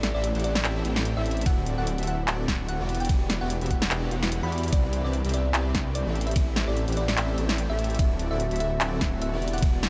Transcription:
Already playing: detuned saw bass A1, analog synth pad A3 C4 G4, supersaw synth C4 E4 G4 A4 E5
0.03 snare, closed hi-hat
0.14 detuned saw bass A1, supersaw synth C4 E4 G4 A4 E5, synth pluck D5
0.24 closed hi-hat
0.35 detuned saw bass A1, supersaw synth C4 E4 G4 A4 F#5, closed hi-hat
0.40 closed hi-hat
0.44 synth pluck D5, closed hi-hat
0.55 snare
0.64 detuned saw bass A1, supersaw synth C4 E4 G4 A4 E5, clap, closed hi-hat
0.85 detuned saw bass A1, supersaw synth C4 E4 G4 A4 G5, closed hi-hat
0.96 snare
1.05 closed hi-hat
1.17 detuned saw bass A1, supersaw synth C4 E4 G4 A4 E5, synth pluck E5
1.26 closed hi-hat
1.31 closed hi-hat
1.37 closed hi-hat
1.41 closed hi-hat
1.46 detuned saw bass D1, analog synth pad D3 E4 F#4, supersaw synth C4 E4 F#4 A4 D5, synth pluck F#5, kick, closed hi-hat, ride
1.66 closed hi-hat
1.78 detuned saw bass D1, supersaw synth C4 E4 F#4 A4 D5, synth pluck F#5
1.87 closed hi-hat
1.98 detuned saw bass D1, supersaw synth C4 E4 F#4 A4 E5, closed hi-hat
2.03 closed hi-hat
2.07 synth pluck F#5, closed hi-hat
2.28 detuned saw bass D1, supersaw synth C4 E4 F#4 A4 D5, clap, closed hi-hat
2.48 detuned saw bass D1, supersaw synth C4 E4 F#4 A4 F#5, kick, snare, closed hi-hat
2.69 synth pluck F#5, closed hi-hat
2.80 detuned saw bass E1, supersaw synth B3 E4 F#4 G4 D5
2.89 analog synth pad E3 D4 G4, closed hi-hat
2.95 closed hi-hat
3.00 synth pluck G5, closed hi-hat
3.05 closed hi-hat
3.09 detuned saw bass E1, supersaw synth B3 F#4 G4, kick, closed hi-hat, ride
3.30 snare, closed hi-hat
3.41 detuned saw bass E1, supersaw synth B3 E4 F#4 G4 D5, synth pluck F#5
3.50 closed hi-hat
3.61 detuned saw bass E1, supersaw synth B3 E4 F#4 G4 E5, closed hi-hat
3.66 closed hi-hat
3.71 synth pluck F#5, kick, closed hi-hat
3.82 snare
3.91 detuned saw bass E1, supersaw synth B3 E4 F#4 G4 D5, clap, closed hi-hat
4.11 detuned saw bass E1, supersaw synth B3 E4 F#4 G4 F#5, closed hi-hat
4.23 snare
4.32 closed hi-hat
4.43 detuned saw bass E2, supersaw synth B3 E4 F#4 G4 D5, synth pluck B5
4.52 closed hi-hat
4.58 closed hi-hat
4.63 closed hi-hat
4.68 closed hi-hat
4.72 detuned saw bass C2, analog synth pad C3 B3 E4, supersaw synth C4 E4 G4 B4 D5, synth pluck D5, kick, closed hi-hat, ride
4.93 closed hi-hat
5.04 detuned saw bass C2, supersaw synth C4 E4 G4 B4 D5, synth pluck D5
5.13 closed hi-hat
5.25 detuned saw bass C2, supersaw synth C4 E4 G4 B4 E5, closed hi-hat
5.29 closed hi-hat
5.34 synth pluck D5, closed hi-hat
5.54 detuned saw bass C2, supersaw synth C4 E4 G4 B4 D5, clap, closed hi-hat
5.75 detuned saw bass C2, supersaw synth C4 G4 G5, kick, snare, closed hi-hat
5.95 synth pluck D5, closed hi-hat
6.06 detuned saw bass A1, supersaw synth C4 E4 G4 A4 E5
6.15 analog synth pad A3 C4 G4, closed hi-hat
6.21 closed hi-hat
6.27 synth pluck E5, closed hi-hat
6.31 closed hi-hat
6.36 detuned saw bass A1, supersaw synth C4 E4 G4 A4 E5, kick, closed hi-hat, ride
6.56 snare, closed hi-hat
6.68 detuned saw bass A1, supersaw synth C4 E4 G4 A4 E5, synth pluck D5
6.77 closed hi-hat
6.88 detuned saw bass A1, supersaw synth C4 E4 G4 A4 F#5, closed hi-hat
6.92 closed hi-hat
6.97 synth pluck D5, closed hi-hat
7.08 snare
7.17 detuned saw bass A1, supersaw synth C4 E4 G4 A4 E5, clap, closed hi-hat
7.38 detuned saw bass A1, supersaw synth C4 E4 G4 A4 G5, closed hi-hat
7.49 snare
7.58 closed hi-hat
7.70 detuned saw bass A1, supersaw synth C4 E4 G4 A4 E5, synth pluck E5
7.79 closed hi-hat
7.84 closed hi-hat
7.90 closed hi-hat
7.95 closed hi-hat
7.99 detuned saw bass D1, analog synth pad D3 E4 F#4, supersaw synth C4 E4 A4 D5, synth pluck E5, kick, closed hi-hat, ride
8.19 closed hi-hat
8.31 detuned saw bass D1, supersaw synth C4 E4 F#4 A4 D5, synth pluck E5
8.40 closed hi-hat
8.51 detuned saw bass D1, supersaw synth C4 E4 F#4 A4 E5, closed hi-hat
8.56 closed hi-hat
8.60 synth pluck E5, closed hi-hat
8.81 detuned saw bass D1, supersaw synth C4 E4 F#4 A4 D5, clap, closed hi-hat
9.01 detuned saw bass D1, kick, snare, closed hi-hat
9.22 synth pluck E5, closed hi-hat
9.33 detuned saw bass E1, supersaw synth B3 E4 F#4 G4 D5
9.42 analog synth pad E3 D4 G4, closed hi-hat
9.48 closed hi-hat
9.53 synth pluck F#5, closed hi-hat
9.58 closed hi-hat
9.62 detuned saw bass E1, supersaw synth B3 D5, kick, closed hi-hat, ride
9.83 snare, closed hi-hat

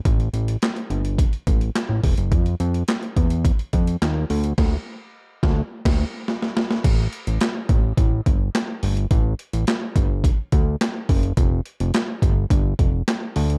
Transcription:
0.05 analog synth bass A1, kick, closed hi-hat
0.20 closed hi-hat
0.34 analog synth bass A1, closed hi-hat
0.48 closed hi-hat
0.62 snare, clap, closed hi-hat
0.76 closed hi-hat
0.90 analog synth bass G1, closed hi-hat
1.05 closed hi-hat
1.18 kick, closed hi-hat
1.33 closed hi-hat
1.47 analog synth bass A1, kick, closed hi-hat
1.61 closed hi-hat
1.75 snare, clap, closed hi-hat
1.89 analog synth bass A1
2.04 analog synth bass E1, kick, open hi-hat
2.18 analog synth bass F#1, closed hi-hat
2.32 analog synth bass F2, kick, closed hi-hat
2.46 closed hi-hat
2.60 analog synth bass F2, closed hi-hat
2.74 closed hi-hat
2.88 snare, clap, closed hi-hat
3.03 closed hi-hat
3.16 analog synth bass E2, kick, closed hi-hat
3.30 closed hi-hat
3.45 kick, closed hi-hat
3.59 closed hi-hat
3.73 analog synth bass F2, kick, closed hi-hat
3.87 closed hi-hat
4.02 analog synth bass D#2, snare, clap, closed hi-hat
4.30 analog synth bass D2, open hi-hat
4.44 closed hi-hat
4.58 analog synth bass D2, kick, snare, crash
5.43 analog synth bass D2, kick, snare
5.85 analog synth bass D2, kick, snare, crash
6.28 snare
6.42 snare
6.57 snare
6.71 snare
6.84 analog synth bass A1, kick, closed hi-hat, crash
7.13 closed hi-hat
7.27 analog synth bass A1, closed hi-hat
7.41 snare, clap, closed hi-hat
7.69 analog synth bass A1, kick, closed hi-hat
7.97 analog synth bass A1, kick, closed hi-hat
8.26 analog synth bass G1, kick, closed hi-hat
8.55 snare, clap, closed hi-hat
8.83 analog synth bass G1, open hi-hat
8.97 closed hi-hat
9.11 analog synth bass A1, kick, closed hi-hat
9.39 closed hi-hat
9.53 analog synth bass A1, closed hi-hat
9.67 snare, clap, closed hi-hat
9.96 analog synth bass G1, kick, closed hi-hat
10.24 kick, closed hi-hat
10.52 analog synth bass D2, kick, closed hi-hat
10.81 snare, clap, closed hi-hat
11.09 analog synth bass F#1, kick, open hi-hat
11.23 closed hi-hat
11.37 analog synth bass F1, kick, closed hi-hat
11.66 closed hi-hat
11.80 analog synth bass F1, closed hi-hat
11.94 snare, clap, closed hi-hat
12.22 analog synth bass G1, kick, closed hi-hat
12.50 analog synth bass G1, kick, closed hi-hat
12.79 analog synth bass F1, kick, closed hi-hat
13.08 snare, clap, closed hi-hat
13.36 analog synth bass D2, open hi-hat
13.50 closed hi-hat

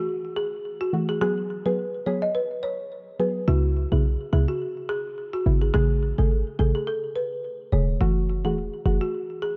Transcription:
0.36 marimba G#4
0.81 marimba F#4
0.93 synth pluck E3 A3 F#4
1.09 marimba G#4
1.21 synth pluck F#3 B3 G#4, marimba G#4
1.66 synth pluck F#3 B3 G#4, marimba B4
2.06 synth pluck F#3 B3 G#4, marimba C#5
2.22 marimba D#5
2.35 marimba B4
2.63 marimba C#5
3.19 synth pluck F#3 B3 G#4, marimba B4
3.48 808-style bass C#2, synth pluck C#3 B3 E4, marimba F#4
3.92 808-style bass B1, synth pluck C#3 B3 E4, marimba G#4
4.32 808-style bass C#2, synth pluck C#3 B3 E4, marimba G#4
4.48 marimba F#4
4.89 marimba G#4
5.33 marimba F#4
5.46 808-style bass G#1, synth pluck C#3 B3 E4
5.62 marimba G#4
5.74 808-style bass A1, synth pluck C#3 A3 G#4, marimba G#4
6.18 808-style bass G#1, synth pluck C#3 A3 G#4, marimba A4
6.59 808-style bass A1, synth pluck C#3 A3 G#4, marimba A4
6.75 marimba G#4
6.87 marimba A4
7.16 marimba B4
7.72 808-style bass E1, synth pluck C#3 A3 G#4, marimba C#5
8.00 808-style bass F#1, synth pluck E3 A3 F#4, marimba F#4
8.45 808-style bass E1, synth pluck E3 A3 F#4, marimba G#4
8.85 808-style bass F#1, synth pluck E3 A3 F#4, marimba G#4
9.01 marimba F#4
9.42 marimba G#4

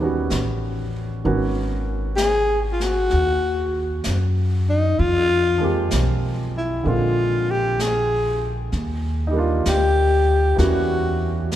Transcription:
Already playing: upright bass D#2
0.00 grand piano D#3 G3 B3 C#4 F#4
0.30 upright bass A1, brush sweep, snare, hi-hat pedal
1.24 upright bass G#1, grand piano D#3 A#3 B3 C#4 F#4, brush sweep
2.16 alto saxophone G#4, brush sweep, snare, hi-hat pedal
2.72 alto saxophone F4
2.80 alto saxophone F#4, snare
3.10 upright bass D#2, brush sweep, snare
4.04 upright bass F#2, brush sweep, snare, hi-hat pedal
4.70 alto saxophone D#4
4.97 upright bass F2, alto saxophone F4, brush sweep
5.58 grand piano F3 G#3 A#3
5.62 grand piano C4 G4
5.91 upright bass B1, brush sweep, snare, hi-hat pedal
6.58 alto saxophone E4
6.83 upright bass A#1, grand piano D3 G#3 A#3 C4, brush sweep
6.87 grand piano F4, alto saxophone F4
7.51 alto saxophone G4
7.79 alto saxophone G#4, brush sweep, snare, hi-hat pedal
8.72 upright bass D#2, brush sweep, snare
9.27 grand piano G3 D#4
9.33 grand piano A#3 D4
9.38 grand piano F4
9.65 upright bass D2, alto saxophone G4, brush sweep, snare, hi-hat pedal
10.56 upright bass E2, grand piano E3 G3 A#3 C#4, alto saxophone F#4, brush sweep, snare
10.60 grand piano F#4
11.51 brush sweep, snare, hi-hat pedal

